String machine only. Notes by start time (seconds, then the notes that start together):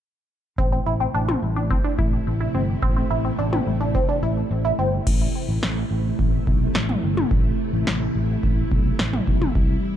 0.58 C3 A3 E4
5.06 C3 A3 E4
9.56 C3 G3